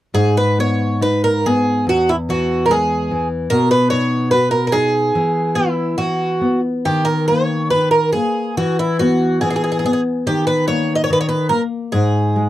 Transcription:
0.14 nylon-string guitar G#2, twelve-string acoustic guitar G#4
0.37 twelve-string acoustic guitar B4
0.59 nylon-string guitar B3, twelve-string acoustic guitar C#5
1.01 nylon-string guitar D#4, twelve-string acoustic guitar B4
1.24 twelve-string acoustic guitar A#4
1.46 nylon-string guitar B3, twelve-string acoustic guitar G#4
1.87 nylon-string guitar E2, twelve-string acoustic guitar F#4
2.09 twelve-string acoustic guitar E4
2.29 nylon-string guitar E3, twelve-string acoustic guitar F#4
2.66 nylon-string guitar G#3, twelve-string acoustic guitar A#4
2.71 twelve-string acoustic guitar G#4
3.11 nylon-string guitar E3
3.50 nylon-string guitar B2, twelve-string acoustic guitar A#4
3.71 twelve-string acoustic guitar B4
3.90 nylon-string guitar D#4, twelve-string acoustic guitar C#5
4.31 nylon-string guitar F#4, twelve-string acoustic guitar B4
4.51 twelve-string acoustic guitar A#4
4.67 twelve-string acoustic guitar A#4
4.72 nylon-string guitar D#4, twelve-string acoustic guitar G#4
5.15 nylon-string guitar E3
5.55 nylon-string guitar B3, twelve-string acoustic guitar E4
5.98 nylon-string guitar E3, twelve-string acoustic guitar F#4
6.41 nylon-string guitar B3
6.85 nylon-string guitar D#3, twelve-string acoustic guitar G4
7.05 twelve-string acoustic guitar A#4
7.28 nylon-string guitar A#3, twelve-string acoustic guitar C#5
7.70 nylon-string guitar D#3, twelve-string acoustic guitar B4
7.91 twelve-string acoustic guitar A#4
8.13 nylon-string guitar A#3, twelve-string acoustic guitar G#4
8.57 nylon-string guitar E3, twelve-string acoustic guitar F#4
8.79 twelve-string acoustic guitar E4
8.99 nylon-string guitar B3, twelve-string acoustic guitar F#4
9.41 nylon-string guitar E3, twelve-string acoustic guitar G#4
9.50 twelve-string acoustic guitar G#4
9.56 twelve-string acoustic guitar G#4
9.64 twelve-string acoustic guitar G#4
9.72 twelve-string acoustic guitar G#4
9.79 twelve-string acoustic guitar G#4
9.84 nylon-string guitar B3, twelve-string acoustic guitar G#4
9.93 twelve-string acoustic guitar G#4
10.27 nylon-string guitar D#3, twelve-string acoustic guitar G4
10.47 twelve-string acoustic guitar B4
10.68 nylon-string guitar A#3, twelve-string acoustic guitar C#5
10.95 twelve-string acoustic guitar D#5
11.04 twelve-string acoustic guitar C#5
11.10 nylon-string guitar D#3, twelve-string acoustic guitar B4
11.21 twelve-string acoustic guitar C#5
11.29 twelve-string acoustic guitar B4
11.49 nylon-string guitar A#3, twelve-string acoustic guitar A#4
11.92 nylon-string guitar G#2, twelve-string acoustic guitar G#4
12.36 nylon-string guitar G#3

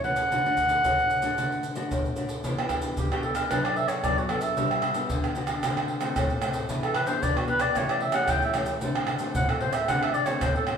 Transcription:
0.04 nylon-string guitar E3 A3 C#4, clarinet F#5, pandeiro
0.16 pandeiro, maracas
0.32 nylon-string guitar D3 A3 D4 F#4, pandeiro, maracas, surdo
0.46 nylon-string guitar A3 D4 F#4, pandeiro, maracas
0.57 pandeiro, maracas, surdo
0.69 pandeiro, maracas
0.84 nylon-string guitar A2 A3 D4 F#4, pandeiro, maracas, surdo
0.99 pandeiro, maracas
1.10 pandeiro, maracas
1.22 nylon-string guitar A3 D4 F#4, pandeiro, maracas
1.38 nylon-string guitar D3 A3 D4 F#4, pandeiro, maracas, surdo
1.52 pandeiro, maracas
1.63 pandeiro, maracas
1.75 nylon-string guitar A3 D4 F#4, pandeiro, maracas
1.91 nylon-string guitar A2, pandeiro, maracas, surdo
2.05 pandeiro, maracas
2.16 nylon-string guitar A3 D4 F#4, pandeiro, maracas
2.29 pandeiro, maracas
2.44 nylon-string guitar E3 B3 D4 G4, pandeiro, maracas, surdo
2.58 nylon-string guitar B3 D4 G4, pandeiro, tamborim, maracas
2.69 pandeiro, tamborim, maracas, surdo
2.82 pandeiro, maracas
2.97 nylon-string guitar B2, clarinet G4, pandeiro, maracas, surdo
3.11 nylon-string guitar B3 D4 G4, clarinet F#4, pandeiro, tamborim, maracas
3.23 clarinet A4, pandeiro
3.35 clarinet A#4, pandeiro, tamborim, maracas
3.51 nylon-string guitar F#3 B3 D4 A4, clarinet B4, pandeiro, tamborim, maracas, surdo
3.65 clarinet D5, pandeiro, tamborim, maracas
3.76 clarinet E5, pandeiro
3.88 clarinet C#5, pandeiro, tamborim, maracas
4.04 nylon-string guitar F#3 B3 D4 A4, clarinet D5, pandeiro, tamborim, maracas, surdo
4.18 clarinet F#4, pandeiro, maracas
4.29 nylon-string guitar B3 D4 A4, clarinet A4, pandeiro, tamborim
4.41 clarinet E5, pandeiro, maracas
4.57 nylon-string guitar G3 B3 D4 F#4, pandeiro, maracas, surdo
4.71 pandeiro, tamborim, maracas
4.82 pandeiro, tamborim
4.94 nylon-string guitar B3 D4 F#4, pandeiro, maracas
5.10 nylon-string guitar D3, pandeiro, maracas, surdo
5.24 pandeiro, tamborim, maracas
5.35 nylon-string guitar B3 D4 F#4, pandeiro, maracas
5.47 pandeiro, tamborim, maracas
5.63 nylon-string guitar D3 A3 C4 F#4, pandeiro, tamborim, maracas, surdo
5.77 pandeiro, tamborim, maracas
5.88 pandeiro
6.01 nylon-string guitar A3 C4 F#4, pandeiro, tamborim, maracas
6.16 nylon-string guitar A2, pandeiro, tamborim, maracas, surdo
6.30 pandeiro, maracas
6.42 nylon-string guitar A3 C4 F#4, pandeiro, tamborim, maracas
6.53 pandeiro, maracas
6.69 nylon-string guitar E3 B3 D4 G#4, pandeiro, maracas, surdo
6.83 clarinet A4, pandeiro, tamborim, maracas
6.95 clarinet B4, pandeiro, tamborim
7.07 nylon-string guitar B3 D4 G#4, clarinet C5, pandeiro, maracas
7.22 nylon-string guitar B2, clarinet D5, pandeiro, maracas, surdo
7.37 clarinet F#4, pandeiro, tamborim, maracas
7.48 nylon-string guitar B3 D4 G#4, clarinet B4, pandeiro
7.59 clarinet D5, pandeiro, tamborim, maracas
7.75 nylon-string guitar E3 A3 C#4 G4, clarinet C#5, pandeiro, tamborim, maracas, surdo
7.89 clarinet D5, pandeiro, tamborim, maracas
8.00 clarinet E5, pandeiro
8.12 nylon-string guitar A3 C#4 G4, clarinet F#5, pandeiro, tamborim, maracas
8.28 nylon-string guitar E3, clarinet G5, pandeiro, tamborim, maracas, surdo
8.42 clarinet E5, pandeiro, maracas
8.54 nylon-string guitar A3 C#4 G4, pandeiro, tamborim, maracas
8.66 pandeiro, maracas
8.81 nylon-string guitar D3 A3 C4 F#4, pandeiro, maracas, surdo
8.95 pandeiro, tamborim, maracas
9.07 pandeiro, tamborim
9.19 nylon-string guitar A3 C4 F#4, pandeiro, maracas
9.35 nylon-string guitar A2, clarinet F#5, pandeiro, maracas, surdo
9.49 clarinet A4, pandeiro, tamborim, maracas
9.60 nylon-string guitar A3 C4 F#4, clarinet C5, pandeiro
9.73 clarinet E5, pandeiro, tamborim, maracas
9.88 nylon-string guitar D3 A3 C4 F#4, clarinet F#5, pandeiro, tamborim, maracas, surdo
10.02 clarinet E5, pandeiro, tamborim, maracas
10.13 clarinet D5, pandeiro, maracas
10.26 nylon-string guitar A3 C4 F#4, clarinet C#5, pandeiro, tamborim, maracas
10.41 nylon-string guitar A2, clarinet C5, pandeiro, tamborim, maracas, surdo
10.56 clarinet A4, pandeiro, maracas
10.67 nylon-string guitar A3 C4 F#4, pandeiro, tamborim

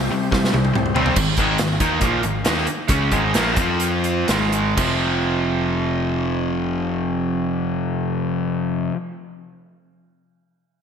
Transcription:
Already playing: tonewheel organ C4 G4 C5
0.10 distorted electric guitar C3 G3, picked electric bass C3
0.31 distorted electric guitar C3 G3, picked electric bass C3, kick, snare
0.44 snare
0.52 picked electric bass C2, distorted electric guitar C3 G3, high tom
0.65 high tom
0.73 picked electric bass C2, distorted electric guitar C3 G3, mid tom
0.86 mid tom
0.94 distorted electric guitar C3 G3 C4, floor tom
1.06 floor tom
1.16 picked electric bass G#1, distorted electric guitar G#2 D#3, kick, crash
1.37 picked electric bass G#1, distorted electric guitar G#2 D#3 G#3, kick, closed hi-hat
1.58 picked electric bass G#1, distorted electric guitar G#2 D#3, snare, closed hi-hat
1.80 picked electric bass D#2, distorted electric guitar D#3 A#3 D#4, kick, closed hi-hat
2.00 picked electric bass A#1, distorted electric guitar A#2 F3 A#3, kick, closed hi-hat
2.22 picked electric bass G#1, distorted electric guitar G#2 D#3, closed hi-hat
2.44 picked electric bass D#2, distorted electric guitar D#3 A#3 D#4, snare, closed hi-hat
2.57 snare
2.67 closed hi-hat
2.88 picked electric bass C#2, distorted electric guitar C#3 G#3 C#4, kick, closed hi-hat
3.11 picked electric bass G#1, distorted electric guitar G#2 D#3 G#3, kick, closed hi-hat
3.34 picked electric bass A#1, distorted electric guitar A#2 F3 A#3, snare, closed hi-hat
3.57 picked electric bass F2, distorted electric guitar F3 C4 F4, kick, closed hi-hat
3.80 closed hi-hat
4.04 closed hi-hat
4.28 picked electric bass G#1, distorted electric guitar G#2 D#3 G#3, snare, closed hi-hat
4.52 closed hi-hat
4.76 picked electric bass F1, distorted electric guitar F2 C3, kick, crash
4.80 distorted electric guitar F3

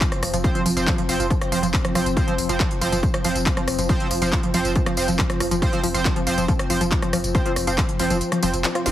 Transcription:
Already playing: ambient pad F3 C4 F4 C5 C6
0.01 synth arpeggio sound F3, kick, clap, closed hi-hat, tambourine
0.12 cross-stick, closed hi-hat
0.23 sub bass F1, synth arpeggio sound F3, cross-stick, open hi-hat, tambourine
0.33 sub bass F1, synth arpeggio sound F3, closed hi-hat, tambourine
0.44 analog polysynth F3 C4 C5, kick, closed hi-hat, tambourine
0.55 synth arpeggio sound F3, closed hi-hat
0.66 sub bass F1, synth arpeggio sound F3, open hi-hat, tambourine
0.77 sub bass F1, analog polysynth F3 C4 C5, closed hi-hat, tambourine
0.87 synth arpeggio sound F3, kick, clap, closed hi-hat
0.98 synth arpeggio sound F3, closed hi-hat
1.09 sub bass F1, analog polysynth F3 C4 C5, open hi-hat, tambourine
1.20 sub bass F1, synth arpeggio sound F3, closed hi-hat, tambourine
1.30 synth arpeggio sound F3, kick, closed hi-hat, tambourine
1.41 cross-stick, closed hi-hat
1.52 sub bass F1, synth arpeggio sound F3, analog polysynth F3 C4 C5, open hi-hat, tambourine
1.63 sub bass F1, synth arpeggio sound F3, closed hi-hat, tambourine
1.74 kick, clap, closed hi-hat, tambourine
1.84 synth arpeggio sound F3, cross-stick, closed hi-hat
1.95 sub bass F1, analog polysynth F3 C4 C5, synth arpeggio sound F3, cross-stick, open hi-hat, tambourine
2.06 sub bass F1, closed hi-hat, tambourine
2.17 synth arpeggio sound F3, analog polysynth F3 C4 C5, kick, closed hi-hat, tambourine
2.28 synth arpeggio sound F3, closed hi-hat
2.38 sub bass F1, open hi-hat, tambourine
2.49 sub bass F1, synth arpeggio sound F3, analog polysynth F3 C4 C5, closed hi-hat, tambourine
2.60 synth arpeggio sound F3, kick, clap, closed hi-hat
2.71 closed hi-hat
2.81 sub bass F1, analog polysynth F3 C4 C5, synth arpeggio sound F3, open hi-hat, tambourine
2.92 sub bass F1, synth arpeggio sound F3, closed hi-hat, tambourine
3.03 kick, closed hi-hat
3.14 synth arpeggio sound F3, cross-stick, closed hi-hat
3.24 sub bass F1, synth arpeggio sound F3, analog polysynth F3 C4 C5, open hi-hat, tambourine
3.35 sub bass F1, closed hi-hat, tambourine
3.46 synth arpeggio sound F3, kick, clap, closed hi-hat
3.57 synth arpeggio sound F3, cross-stick, closed hi-hat
3.68 sub bass F1, cross-stick, open hi-hat, tambourine
3.79 sub bass F1, synth arpeggio sound F3, closed hi-hat, tambourine
3.89 synth arpeggio sound F3, analog polysynth F3 C4 C5, kick, closed hi-hat, tambourine
4.00 closed hi-hat
4.11 sub bass F1, synth arpeggio sound F3, open hi-hat, tambourine
4.22 sub bass F1, synth arpeggio sound F3, analog polysynth F3 C4 C5, closed hi-hat, tambourine
4.32 kick, clap, closed hi-hat, tambourine
4.43 synth arpeggio sound F3, closed hi-hat
4.54 sub bass F1, analog polysynth F3 C4 C5, synth arpeggio sound F3, open hi-hat, tambourine
4.65 sub bass F1, closed hi-hat, tambourine
4.76 synth arpeggio sound F3, kick, closed hi-hat, tambourine
4.86 synth arpeggio sound F3, cross-stick, closed hi-hat
4.97 sub bass F1, analog polysynth F3 C4 C5, open hi-hat, tambourine
5.08 sub bass F1, synth arpeggio sound F3, closed hi-hat, tambourine
5.19 synth arpeggio sound F3, kick, clap, closed hi-hat, tambourine
5.30 cross-stick, closed hi-hat
5.40 sub bass F1, synth arpeggio sound F3, cross-stick, open hi-hat, tambourine
5.51 sub bass F1, synth arpeggio sound F3, closed hi-hat, tambourine
5.62 analog polysynth F3 C4 C5, kick, closed hi-hat, tambourine
5.73 synth arpeggio sound F3, closed hi-hat
5.83 sub bass F1, synth arpeggio sound F3, open hi-hat, tambourine
5.94 sub bass F1, analog polysynth F3 C4 C5, closed hi-hat, tambourine
6.05 synth arpeggio sound F3, kick, clap, closed hi-hat
6.16 synth arpeggio sound F3, closed hi-hat
6.27 sub bass F1, analog polysynth F3 C4 C5, open hi-hat, tambourine
6.38 sub bass F1, synth arpeggio sound F3, closed hi-hat, tambourine
6.48 synth arpeggio sound F3, kick, closed hi-hat, tambourine
6.59 cross-stick, closed hi-hat
6.70 sub bass F1, analog polysynth F3 C4 C5, synth arpeggio sound F3, open hi-hat, tambourine
6.81 sub bass F1, synth arpeggio sound F3, closed hi-hat, tambourine
6.92 kick, clap, closed hi-hat, tambourine
7.02 synth arpeggio sound F3, cross-stick, closed hi-hat
7.13 sub bass F1, synth arpeggio sound F3, cross-stick, open hi-hat, tambourine
7.24 sub bass F1, closed hi-hat, tambourine
7.35 analog polysynth F3 C4 C5, synth arpeggio sound F3, kick, closed hi-hat, tambourine
7.46 synth arpeggio sound F3, closed hi-hat
7.56 sub bass F1, cross-stick, open hi-hat, tambourine
7.67 sub bass F1, analog polysynth F3 C4 C5, synth arpeggio sound F3, closed hi-hat, tambourine
7.78 synth arpeggio sound F3, kick, clap, closed hi-hat
7.89 closed hi-hat
7.99 sub bass F1, analog polysynth F3 C4 C5, synth arpeggio sound F3, open hi-hat, tambourine
8.10 sub bass F1, synth arpeggio sound F3, closed hi-hat, tambourine
8.21 closed hi-hat, tambourine
8.32 synth arpeggio sound F3, cross-stick, closed hi-hat
8.43 sub bass F1, synth arpeggio sound F3, analog polysynth F3 C4 C5, open hi-hat, tambourine
8.54 sub bass F1, closed hi-hat, tambourine
8.64 synth arpeggio sound F3, clap, closed hi-hat, tambourine
8.75 synth arpeggio sound F4, cross-stick, closed hi-hat
8.86 sub bass F1, analog polysynth F3 C4 C5, snare, open hi-hat, tambourine

